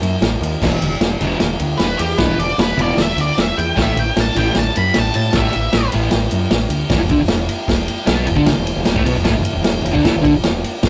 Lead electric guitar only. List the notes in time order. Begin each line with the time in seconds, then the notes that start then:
1.78 B4
1.97 G4
2.18 B4
2.39 D5
2.60 B4
2.82 D5
3.02 E5
3.21 D5
3.41 E5
3.57 G5
3.82 E5
3.99 G5
4.21 A5
4.38 G5
4.59 A5
4.77 B5
4.99 A5
5.16 A5
5.36 E5